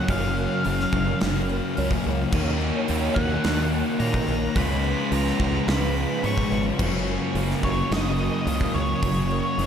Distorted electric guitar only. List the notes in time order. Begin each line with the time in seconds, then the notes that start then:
Already playing: C#4
0.08 F#2 C#3 F#3
0.63 F#2 C#3 F#3
1.20 F#2 C#3 F#3
1.76 F#2 C#3 F#3
2.32 D#3 A#3 D#4
2.88 D#3 A#3 D#4
3.44 D#3 A#3 D#4
4.00 D#3 A#3 D#4
4.55 C#3 G#3 C#4
5.12 C#3 G#3 C#4
5.67 C#3 G#3 C#4
6.24 C#3 G#3 C#4
6.79 F#2 C#3 F#3
7.36 F#2 C#3 F#3
7.92 F#2 C#3 F#3
8.48 F#2 C#3 F#3
9.03 F#2 C#3 F#3
9.59 F#2 C#3 F#3